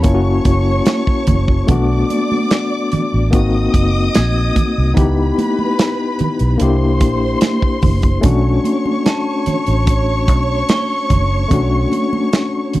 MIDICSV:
0, 0, Header, 1, 7, 480
1, 0, Start_track
1, 0, Key_signature, 2, "minor"
1, 0, Tempo, 818554
1, 990, Time_signature, 4, 2, 24, 8
1, 7506, End_track
2, 0, Start_track
2, 0, Title_t, "Glockenspiel"
2, 0, Program_c, 0, 9
2, 0, Note_on_c, 0, 81, 59
2, 252, Note_off_c, 0, 81, 0
2, 2439, Note_on_c, 0, 92, 72
2, 3133, Note_off_c, 0, 92, 0
2, 5312, Note_on_c, 0, 81, 52
2, 6274, Note_on_c, 0, 85, 65
2, 6566, Note_off_c, 0, 81, 0
2, 7506, Note_off_c, 0, 85, 0
2, 7506, End_track
3, 0, Start_track
3, 0, Title_t, "String section"
3, 0, Program_c, 1, 48
3, 28, Note_on_c, 1, 85, 100
3, 30, Note_on_c, 1, 73, 87
3, 971, Note_off_c, 1, 85, 0
3, 972, Note_off_c, 1, 73, 0
3, 984, Note_on_c, 1, 74, 82
3, 986, Note_on_c, 1, 86, 104
3, 1930, Note_off_c, 1, 74, 0
3, 1931, Note_off_c, 1, 86, 0
3, 1959, Note_on_c, 1, 87, 107
3, 1963, Note_on_c, 1, 75, 87
3, 2897, Note_off_c, 1, 87, 0
3, 2899, Note_off_c, 1, 75, 0
3, 2916, Note_on_c, 1, 71, 87
3, 2920, Note_on_c, 1, 83, 103
3, 3856, Note_off_c, 1, 71, 0
3, 3858, Note_off_c, 1, 83, 0
3, 3877, Note_on_c, 1, 72, 86
3, 3880, Note_on_c, 1, 84, 98
3, 4816, Note_off_c, 1, 72, 0
3, 4817, Note_off_c, 1, 84, 0
3, 4837, Note_on_c, 1, 85, 105
3, 4842, Note_on_c, 1, 73, 88
3, 7506, Note_off_c, 1, 73, 0
3, 7506, Note_off_c, 1, 85, 0
3, 7506, End_track
4, 0, Start_track
4, 0, Title_t, "Tine electric piano"
4, 0, Program_c, 2, 4
4, 0, Control_c, 2, 64, 127
4, 16, Note_on_c, 2, 58, 64
4, 28, Note_on_c, 2, 61, 68
4, 36, Control_c, 2, 64, 0
4, 37, Note_on_c, 2, 64, 62
4, 43, Note_on_c, 2, 65, 53
4, 74, Note_off_c, 2, 65, 0
4, 85, Note_on_c, 2, 66, 79
4, 133, Control_c, 2, 64, 127
4, 965, Note_off_c, 2, 58, 0
4, 971, Note_off_c, 2, 61, 0
4, 976, Note_off_c, 2, 64, 0
4, 980, Note_on_c, 2, 57, 72
4, 987, Note_on_c, 2, 59, 71
4, 998, Control_c, 2, 64, 0
4, 998, Note_on_c, 2, 62, 65
4, 1001, Note_off_c, 2, 66, 0
4, 1006, Note_on_c, 2, 66, 79
4, 1092, Control_c, 2, 64, 127
4, 1928, Note_off_c, 2, 57, 0
4, 1931, Note_off_c, 2, 59, 0
4, 1937, Note_off_c, 2, 62, 0
4, 1938, Note_on_c, 2, 58, 70
4, 1941, Note_off_c, 2, 66, 0
4, 1947, Note_on_c, 2, 60, 61
4, 1954, Note_on_c, 2, 63, 59
4, 1961, Control_c, 2, 64, 0
4, 1965, Note_on_c, 2, 66, 72
4, 2047, Control_c, 2, 64, 127
4, 2887, Note_off_c, 2, 58, 0
4, 2891, Note_off_c, 2, 60, 0
4, 2894, Note_off_c, 2, 63, 0
4, 2895, Note_on_c, 2, 59, 70
4, 2901, Note_off_c, 2, 66, 0
4, 2901, Note_on_c, 2, 63, 73
4, 2913, Note_on_c, 2, 64, 62
4, 2918, Note_on_c, 2, 67, 90
4, 2921, Control_c, 2, 64, 0
4, 3011, Control_c, 2, 64, 127
4, 3845, Note_off_c, 2, 59, 0
4, 3848, Note_off_c, 2, 63, 0
4, 3855, Note_off_c, 2, 64, 0
4, 3857, Note_off_c, 2, 67, 0
4, 3857, Note_on_c, 2, 58, 71
4, 3866, Note_on_c, 2, 62, 59
4, 3877, Note_on_c, 2, 64, 64
4, 3882, Control_c, 2, 64, 0
4, 3883, Note_on_c, 2, 67, 73
4, 3981, Control_c, 2, 64, 127
4, 4806, Note_off_c, 2, 58, 0
4, 4810, Note_off_c, 2, 62, 0
4, 4815, Note_on_c, 2, 57, 75
4, 4816, Note_off_c, 2, 64, 0
4, 4819, Note_off_c, 2, 67, 0
4, 4821, Note_on_c, 2, 61, 74
4, 4833, Note_on_c, 2, 62, 68
4, 4840, Control_c, 2, 64, 0
4, 4842, Note_on_c, 2, 66, 79
4, 4939, Control_c, 2, 64, 127
4, 6718, Note_off_c, 2, 57, 0
4, 6721, Note_off_c, 2, 61, 0
4, 6727, Note_off_c, 2, 62, 0
4, 6732, Note_off_c, 2, 66, 0
4, 6734, Note_on_c, 2, 57, 77
4, 6746, Note_on_c, 2, 61, 63
4, 6754, Note_on_c, 2, 62, 69
4, 6764, Note_on_c, 2, 66, 83
4, 7506, Note_off_c, 2, 57, 0
4, 7506, Note_off_c, 2, 61, 0
4, 7506, Note_off_c, 2, 62, 0
4, 7506, Note_off_c, 2, 66, 0
4, 7506, End_track
5, 0, Start_track
5, 0, Title_t, "Fingered electric bass"
5, 0, Program_c, 3, 33
5, 29, Note_on_c, 3, 30, 97
5, 224, Note_off_c, 3, 30, 0
5, 269, Note_on_c, 3, 30, 87
5, 465, Note_off_c, 3, 30, 0
5, 751, Note_on_c, 3, 30, 85
5, 946, Note_off_c, 3, 30, 0
5, 991, Note_on_c, 3, 35, 97
5, 1187, Note_off_c, 3, 35, 0
5, 1841, Note_on_c, 3, 33, 89
5, 1935, Note_off_c, 3, 33, 0
5, 1956, Note_on_c, 3, 32, 93
5, 2150, Note_off_c, 3, 32, 0
5, 2193, Note_on_c, 3, 30, 75
5, 2389, Note_off_c, 3, 30, 0
5, 2445, Note_on_c, 3, 34, 85
5, 2636, Note_off_c, 3, 34, 0
5, 2804, Note_on_c, 3, 36, 101
5, 2897, Note_off_c, 3, 36, 0
5, 2916, Note_on_c, 3, 37, 91
5, 3111, Note_off_c, 3, 37, 0
5, 3757, Note_on_c, 3, 35, 81
5, 3853, Note_off_c, 3, 35, 0
5, 3876, Note_on_c, 3, 36, 97
5, 4113, Note_off_c, 3, 36, 0
5, 4113, Note_on_c, 3, 34, 87
5, 4309, Note_off_c, 3, 34, 0
5, 4593, Note_on_c, 3, 30, 90
5, 4789, Note_off_c, 3, 30, 0
5, 4832, Note_on_c, 3, 35, 105
5, 5028, Note_off_c, 3, 35, 0
5, 5675, Note_on_c, 3, 33, 89
5, 6031, Note_off_c, 3, 33, 0
5, 6031, Note_on_c, 3, 35, 89
5, 6227, Note_off_c, 3, 35, 0
5, 6515, Note_on_c, 3, 30, 87
5, 6709, Note_off_c, 3, 30, 0
5, 6753, Note_on_c, 3, 35, 103
5, 6947, Note_off_c, 3, 35, 0
5, 7506, End_track
6, 0, Start_track
6, 0, Title_t, "Muted fingered electric bass strokes"
6, 1723, Note_on_c, 9, 29, 43
6, 1782, Note_off_c, 9, 29, 0
6, 3638, Note_on_c, 9, 29, 46
6, 3696, Note_off_c, 9, 29, 0
6, 5555, Note_on_c, 9, 29, 48
6, 5613, Note_off_c, 9, 29, 0
6, 7478, Note_on_c, 9, 29, 48
6, 7506, Note_off_c, 9, 29, 0
6, 7506, End_track
7, 0, Start_track
7, 0, Title_t, "Drums"
7, 20, Note_on_c, 9, 42, 83
7, 25, Note_on_c, 9, 36, 84
7, 79, Note_off_c, 9, 42, 0
7, 84, Note_off_c, 9, 36, 0
7, 263, Note_on_c, 9, 42, 75
7, 265, Note_on_c, 9, 36, 90
7, 268, Note_on_c, 9, 62, 34
7, 322, Note_off_c, 9, 42, 0
7, 324, Note_off_c, 9, 36, 0
7, 327, Note_off_c, 9, 62, 0
7, 502, Note_on_c, 9, 42, 92
7, 508, Note_on_c, 9, 38, 114
7, 511, Note_on_c, 9, 62, 30
7, 511, Note_on_c, 9, 63, 67
7, 561, Note_off_c, 9, 42, 0
7, 566, Note_off_c, 9, 38, 0
7, 570, Note_off_c, 9, 62, 0
7, 570, Note_off_c, 9, 63, 0
7, 629, Note_on_c, 9, 36, 91
7, 688, Note_off_c, 9, 36, 0
7, 744, Note_on_c, 9, 42, 78
7, 748, Note_on_c, 9, 36, 80
7, 752, Note_on_c, 9, 62, 31
7, 752, Note_on_c, 9, 63, 45
7, 752, Note_on_c, 9, 64, 66
7, 803, Note_off_c, 9, 42, 0
7, 807, Note_off_c, 9, 36, 0
7, 811, Note_off_c, 9, 62, 0
7, 811, Note_off_c, 9, 63, 0
7, 811, Note_off_c, 9, 64, 0
7, 869, Note_on_c, 9, 36, 84
7, 928, Note_off_c, 9, 36, 0
7, 987, Note_on_c, 9, 42, 88
7, 989, Note_on_c, 9, 36, 120
7, 989, Note_on_c, 9, 64, 77
7, 1045, Note_off_c, 9, 42, 0
7, 1047, Note_off_c, 9, 36, 0
7, 1048, Note_off_c, 9, 64, 0
7, 1232, Note_on_c, 9, 63, 65
7, 1233, Note_on_c, 9, 42, 65
7, 1291, Note_off_c, 9, 42, 0
7, 1291, Note_off_c, 9, 63, 0
7, 1359, Note_on_c, 9, 63, 79
7, 1418, Note_off_c, 9, 63, 0
7, 1470, Note_on_c, 9, 42, 83
7, 1473, Note_on_c, 9, 38, 107
7, 1475, Note_on_c, 9, 62, 36
7, 1529, Note_off_c, 9, 42, 0
7, 1532, Note_off_c, 9, 38, 0
7, 1533, Note_off_c, 9, 62, 0
7, 1710, Note_on_c, 9, 42, 70
7, 1718, Note_on_c, 9, 62, 37
7, 1718, Note_on_c, 9, 64, 85
7, 1769, Note_off_c, 9, 42, 0
7, 1776, Note_off_c, 9, 62, 0
7, 1776, Note_off_c, 9, 64, 0
7, 1951, Note_on_c, 9, 42, 83
7, 1952, Note_on_c, 9, 36, 91
7, 2010, Note_off_c, 9, 42, 0
7, 2011, Note_off_c, 9, 36, 0
7, 2192, Note_on_c, 9, 36, 88
7, 2193, Note_on_c, 9, 62, 33
7, 2194, Note_on_c, 9, 42, 76
7, 2251, Note_off_c, 9, 36, 0
7, 2252, Note_off_c, 9, 62, 0
7, 2253, Note_off_c, 9, 42, 0
7, 2430, Note_on_c, 9, 42, 101
7, 2436, Note_on_c, 9, 38, 112
7, 2439, Note_on_c, 9, 62, 28
7, 2439, Note_on_c, 9, 63, 67
7, 2489, Note_off_c, 9, 42, 0
7, 2495, Note_off_c, 9, 38, 0
7, 2498, Note_off_c, 9, 62, 0
7, 2498, Note_off_c, 9, 63, 0
7, 2672, Note_on_c, 9, 62, 31
7, 2672, Note_on_c, 9, 63, 49
7, 2672, Note_on_c, 9, 64, 70
7, 2674, Note_on_c, 9, 36, 91
7, 2674, Note_on_c, 9, 42, 76
7, 2731, Note_off_c, 9, 62, 0
7, 2731, Note_off_c, 9, 63, 0
7, 2731, Note_off_c, 9, 64, 0
7, 2733, Note_off_c, 9, 36, 0
7, 2733, Note_off_c, 9, 42, 0
7, 2910, Note_on_c, 9, 64, 72
7, 2914, Note_on_c, 9, 36, 118
7, 2915, Note_on_c, 9, 42, 99
7, 2969, Note_off_c, 9, 64, 0
7, 2973, Note_off_c, 9, 36, 0
7, 2974, Note_off_c, 9, 42, 0
7, 3156, Note_on_c, 9, 62, 33
7, 3156, Note_on_c, 9, 63, 71
7, 3159, Note_on_c, 9, 42, 72
7, 3215, Note_off_c, 9, 62, 0
7, 3215, Note_off_c, 9, 63, 0
7, 3218, Note_off_c, 9, 42, 0
7, 3277, Note_on_c, 9, 63, 73
7, 3335, Note_off_c, 9, 63, 0
7, 3395, Note_on_c, 9, 42, 85
7, 3396, Note_on_c, 9, 62, 35
7, 3398, Note_on_c, 9, 38, 110
7, 3453, Note_off_c, 9, 42, 0
7, 3454, Note_off_c, 9, 62, 0
7, 3456, Note_off_c, 9, 38, 0
7, 3629, Note_on_c, 9, 42, 71
7, 3639, Note_on_c, 9, 62, 34
7, 3639, Note_on_c, 9, 64, 76
7, 3688, Note_off_c, 9, 42, 0
7, 3698, Note_off_c, 9, 62, 0
7, 3698, Note_off_c, 9, 64, 0
7, 3749, Note_on_c, 9, 42, 51
7, 3808, Note_off_c, 9, 42, 0
7, 3868, Note_on_c, 9, 42, 78
7, 3879, Note_on_c, 9, 62, 37
7, 3926, Note_off_c, 9, 42, 0
7, 3938, Note_off_c, 9, 62, 0
7, 4108, Note_on_c, 9, 42, 82
7, 4110, Note_on_c, 9, 36, 91
7, 4111, Note_on_c, 9, 62, 37
7, 4167, Note_off_c, 9, 42, 0
7, 4168, Note_off_c, 9, 36, 0
7, 4170, Note_off_c, 9, 62, 0
7, 4345, Note_on_c, 9, 42, 95
7, 4351, Note_on_c, 9, 38, 113
7, 4357, Note_on_c, 9, 62, 29
7, 4357, Note_on_c, 9, 63, 63
7, 4404, Note_off_c, 9, 42, 0
7, 4409, Note_off_c, 9, 38, 0
7, 4416, Note_off_c, 9, 62, 0
7, 4416, Note_off_c, 9, 63, 0
7, 4471, Note_on_c, 9, 36, 88
7, 4529, Note_off_c, 9, 36, 0
7, 4586, Note_on_c, 9, 46, 59
7, 4590, Note_on_c, 9, 36, 89
7, 4594, Note_on_c, 9, 62, 31
7, 4594, Note_on_c, 9, 63, 52
7, 4594, Note_on_c, 9, 64, 69
7, 4645, Note_off_c, 9, 46, 0
7, 4649, Note_off_c, 9, 36, 0
7, 4652, Note_off_c, 9, 62, 0
7, 4652, Note_off_c, 9, 63, 0
7, 4652, Note_off_c, 9, 64, 0
7, 4704, Note_on_c, 9, 42, 50
7, 4710, Note_on_c, 9, 36, 91
7, 4763, Note_off_c, 9, 42, 0
7, 4769, Note_off_c, 9, 36, 0
7, 4827, Note_on_c, 9, 42, 101
7, 4828, Note_on_c, 9, 62, 35
7, 4828, Note_on_c, 9, 64, 79
7, 4830, Note_on_c, 9, 36, 115
7, 4886, Note_off_c, 9, 42, 0
7, 4886, Note_off_c, 9, 62, 0
7, 4886, Note_off_c, 9, 64, 0
7, 4888, Note_off_c, 9, 36, 0
7, 5069, Note_on_c, 9, 63, 66
7, 5074, Note_on_c, 9, 42, 63
7, 5128, Note_off_c, 9, 63, 0
7, 5133, Note_off_c, 9, 42, 0
7, 5193, Note_on_c, 9, 63, 72
7, 5252, Note_off_c, 9, 63, 0
7, 5311, Note_on_c, 9, 42, 78
7, 5311, Note_on_c, 9, 62, 34
7, 5315, Note_on_c, 9, 38, 102
7, 5369, Note_off_c, 9, 62, 0
7, 5370, Note_off_c, 9, 42, 0
7, 5373, Note_off_c, 9, 38, 0
7, 5548, Note_on_c, 9, 42, 79
7, 5554, Note_on_c, 9, 62, 40
7, 5554, Note_on_c, 9, 64, 72
7, 5607, Note_off_c, 9, 42, 0
7, 5613, Note_off_c, 9, 62, 0
7, 5613, Note_off_c, 9, 64, 0
7, 5668, Note_on_c, 9, 42, 52
7, 5727, Note_off_c, 9, 42, 0
7, 5788, Note_on_c, 9, 42, 75
7, 5789, Note_on_c, 9, 36, 89
7, 5846, Note_off_c, 9, 42, 0
7, 5848, Note_off_c, 9, 36, 0
7, 6023, Note_on_c, 9, 62, 34
7, 6029, Note_on_c, 9, 36, 85
7, 6029, Note_on_c, 9, 42, 79
7, 6082, Note_off_c, 9, 62, 0
7, 6087, Note_off_c, 9, 36, 0
7, 6087, Note_off_c, 9, 42, 0
7, 6267, Note_on_c, 9, 42, 86
7, 6270, Note_on_c, 9, 62, 30
7, 6270, Note_on_c, 9, 63, 56
7, 6272, Note_on_c, 9, 38, 115
7, 6325, Note_off_c, 9, 42, 0
7, 6329, Note_off_c, 9, 62, 0
7, 6329, Note_off_c, 9, 63, 0
7, 6331, Note_off_c, 9, 38, 0
7, 6509, Note_on_c, 9, 42, 82
7, 6510, Note_on_c, 9, 36, 84
7, 6512, Note_on_c, 9, 63, 49
7, 6512, Note_on_c, 9, 64, 64
7, 6567, Note_off_c, 9, 42, 0
7, 6569, Note_off_c, 9, 36, 0
7, 6570, Note_off_c, 9, 63, 0
7, 6570, Note_off_c, 9, 64, 0
7, 6745, Note_on_c, 9, 62, 36
7, 6745, Note_on_c, 9, 64, 76
7, 6750, Note_on_c, 9, 36, 122
7, 6751, Note_on_c, 9, 42, 99
7, 6804, Note_off_c, 9, 62, 0
7, 6804, Note_off_c, 9, 64, 0
7, 6809, Note_off_c, 9, 36, 0
7, 6810, Note_off_c, 9, 42, 0
7, 6989, Note_on_c, 9, 62, 30
7, 6989, Note_on_c, 9, 63, 67
7, 6995, Note_on_c, 9, 42, 70
7, 7048, Note_off_c, 9, 62, 0
7, 7048, Note_off_c, 9, 63, 0
7, 7053, Note_off_c, 9, 42, 0
7, 7112, Note_on_c, 9, 63, 74
7, 7171, Note_off_c, 9, 63, 0
7, 7229, Note_on_c, 9, 42, 83
7, 7233, Note_on_c, 9, 38, 105
7, 7233, Note_on_c, 9, 62, 39
7, 7288, Note_off_c, 9, 42, 0
7, 7291, Note_off_c, 9, 38, 0
7, 7292, Note_off_c, 9, 62, 0
7, 7468, Note_on_c, 9, 42, 71
7, 7475, Note_on_c, 9, 62, 35
7, 7475, Note_on_c, 9, 64, 83
7, 7506, Note_off_c, 9, 42, 0
7, 7506, Note_off_c, 9, 62, 0
7, 7506, Note_off_c, 9, 64, 0
7, 7506, End_track
0, 0, End_of_file